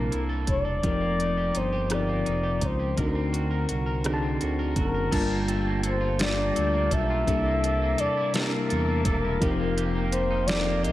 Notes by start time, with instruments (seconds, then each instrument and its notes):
Already playing: tine electric piano C3 G3 A#3 D4 E4 A4 A5, clean electric guitar C3 A#3 E4 A4, flugelhorn A#4
0.12 analog synth bass C2, clean electric guitar E4, closed hi-hat
0.29 clean electric guitar A4
0.47 analog synth bass E1, clean electric guitar E4, kick, closed hi-hat
0.51 flugelhorn D5
0.65 clean electric guitar A4
0.83 analog synth bass F1, clean electric guitar F3 G4, tine electric piano F3 C4 D#4 G4 A#4, kick, closed hi-hat
1.00 clean electric guitar A#3
1.19 clean electric guitar D#4, closed hi-hat
1.37 clean electric guitar G4
1.55 analog synth bass G1, clean electric guitar D#4, flugelhorn C5, closed hi-hat
1.73 clean electric guitar G4
1.90 clean electric guitar F3 G4, tine electric piano F3 C4 D#4 G4 A#4, cross-stick, closed hi-hat
1.94 flugelhorn D5
2.08 clean electric guitar A#3
2.26 analog synth bass F1, clean electric guitar D#4, closed hi-hat
2.43 clean electric guitar G4
2.61 analog synth bass C#2, clean electric guitar D#4, kick, closed hi-hat
2.66 flugelhorn C5
2.79 clean electric guitar G4
2.97 analog synth bass D2, clean electric guitar D3 A#4, tine electric piano D3 C4 D#4 F#4 A#4, kick, closed hi-hat
3.01 flugelhorn A#4
3.15 clean electric guitar C4
3.33 clean electric guitar F#4, closed hi-hat
3.51 clean electric guitar A#4
3.69 analog synth bass C2, clean electric guitar F#4, closed hi-hat
3.86 clean electric guitar A#4
4.04 clean electric guitar D3 A#4, tine electric piano D3 C4 D#4 F#4 G#4, cross-stick, closed hi-hat
4.14 tine electric piano A5
4.23 clean electric guitar C4
4.41 analog synth bass D2, clean electric guitar F#4, closed hi-hat
4.59 clean electric guitar A#4
4.76 analog synth bass F#1, clean electric guitar F#4, flugelhorn A#4, kick, closed hi-hat
4.94 clean electric guitar A#4
5.11 analog synth bass G1, clean electric guitar G3 A4, tine electric piano G3 A#3 D4 F4 A5, tonewheel organ F4 G4 G5 A5, kick, closed hi-hat, crash
5.29 clean electric guitar A#3
5.48 clean electric guitar A4, closed hi-hat
5.67 clean electric guitar A#3
5.83 clean electric guitar A4, flugelhorn C5, closed hi-hat
6.01 clean electric guitar F4
6.19 clean electric guitar G3 A4, tine electric piano G3 A#3 D4 F4 A4, flugelhorn D5, snare, closed hi-hat
6.37 clean electric guitar A#3
6.55 analog synth bass D2, clean electric guitar A4, closed hi-hat
6.73 clean electric guitar A#3
6.91 analog synth bass B1, clean electric guitar A4, flugelhorn E5, kick, closed hi-hat
7.10 clean electric guitar F4
7.27 analog synth bass C2, tine electric piano C3 G3 A#3 D4 E4 A4, clean electric guitar C3 A4, tonewheel organ A#3 E5 D6, kick, closed hi-hat
7.46 clean electric guitar A#3
7.63 clean electric guitar A4, closed hi-hat
7.82 clean electric guitar A#3
7.98 analog synth bass E2, clean electric guitar A4, flugelhorn D5, closed hi-hat
8.17 clean electric guitar E4
8.34 tine electric piano C3 G3 A#3 D4 E4 G4, clean electric guitar C3 A4, flugelhorn A#4, snare, closed hi-hat
8.53 clean electric guitar A#3
8.69 analog synth bass E2, clean electric guitar A4, closed hi-hat
8.88 clean electric guitar A#3
9.05 analog synth bass E1, clean electric guitar A4, flugelhorn A#4, kick, closed hi-hat
9.24 clean electric guitar E4
9.40 analog synth bass F1, tine electric piano F3 C4 D#4 G4 A#4, clean electric guitar F3 G4, tonewheel organ F5 G5, kick, closed hi-hat
9.60 clean electric guitar A#3
9.78 clean electric guitar G4, closed hi-hat
9.95 clean electric guitar A#3
10.12 clean electric guitar G4, flugelhorn C5, closed hi-hat
10.30 clean electric guitar D#4
10.48 tine electric piano F3 C4 D#4 G4 A4, clean electric guitar F3 G4, flugelhorn D5, snare, closed hi-hat
10.57 tine electric piano A#4
10.66 clean electric guitar A#3
10.83 analog synth bass C2, clean electric guitar G4, flugelhorn D#5, closed hi-hat